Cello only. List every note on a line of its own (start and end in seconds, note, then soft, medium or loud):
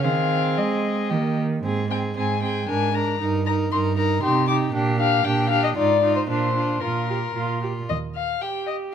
0.04 0.59 D#3 soft
0.57 1.12 G#3 soft
1.10 1.63 D#3 soft
1.64 2.10 G#2 soft
2.17 2.62 G#2 soft
2.69 3.15 G#2 soft
3.21 3.66 G2 soft
3.72 4.17 G2 soft
4.23 4.69 C3 medium
4.74 5.19 A#2 medium
5.26 5.71 A#2 medium
5.77 6.24 G#2 medium
6.30 6.77 A#2 soft
6.83 7.30 A#2 soft
7.36 7.83 A#2 soft
7.90 8.31 D#2 soft